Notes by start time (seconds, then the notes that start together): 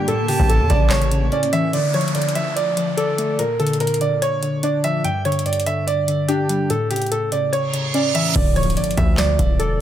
0.08 A2 C#3 A3 E4 A4 A5, closed hi-hat
0.28 C#3 G4, open hi-hat
0.39 A1, kick
0.49 A2 A4, closed hi-hat
0.60 E2
0.70 A1 C#3 D5, kick, closed hi-hat
0.90 C#5, snare, clap, closed hi-hat
1.02 closed hi-hat
1.11 C#3, closed hi-hat
1.32 C#4 D5, closed hi-hat
1.43 closed hi-hat
1.53 E3 E5, closed hi-hat
1.73 D3 D5, closed hi-hat, downlifter
1.94 F3 C#5, closed hi-hat
2.01 closed hi-hat
2.08 closed hi-hat
2.15 D3 D5, closed hi-hat
2.22 closed hi-hat
2.29 closed hi-hat
2.35 F3 E5, closed hi-hat
2.56 D5, closed hi-hat
2.77 F3, closed hi-hat
2.97 A4 D5, closed hi-hat
3.18 A3, closed hi-hat
3.39 A#2 A#4, closed hi-hat
3.59 D3 A4, closed hi-hat
3.67 closed hi-hat
3.73 closed hi-hat
3.80 A#2 A#4, closed hi-hat
3.87 closed hi-hat
3.94 closed hi-hat
4.01 D3 D5, closed hi-hat
4.22 C#5, closed hi-hat
4.42 D3, closed hi-hat
4.63 D4 D5, closed hi-hat
4.84 F3 E5, closed hi-hat
5.04 G2 G5, closed hi-hat
5.25 D3 C#5, closed hi-hat
5.32 closed hi-hat
5.39 closed hi-hat
5.46 G2 D5, closed hi-hat
5.53 closed hi-hat
5.60 closed hi-hat
5.66 D3 E5, closed hi-hat
5.87 D5, closed hi-hat
6.08 D3, closed hi-hat
6.28 D4 G4, closed hi-hat
6.49 G3, closed hi-hat
6.70 A2 A4, closed hi-hat
6.90 C#3 G4, closed hi-hat
6.96 closed hi-hat
7.02 closed hi-hat
7.06 closed hi-hat
7.11 A2 A4, closed hi-hat
7.32 C#3 D5, closed hi-hat
7.53 C#5, closed hi-hat, reverse cymbal
7.73 C#3, closed hi-hat
7.94 C#4 D5, closed hi-hat
8.15 E3 E5, closed hi-hat
8.35 D1 D3 D5, kick, closed hi-hat, crash, impact
8.56 F3 C#5, closed hi-hat
8.63 closed hi-hat
8.70 closed hi-hat
8.77 D3 D5, closed hi-hat
8.84 closed hi-hat
8.91 closed hi-hat
8.97 D2 F3 E5, kick, closed hi-hat
9.17 D5, snare, clap, closed hi-hat
9.39 D1 F3, kick, closed hi-hat
9.59 E1 A4 D5, closed hi-hat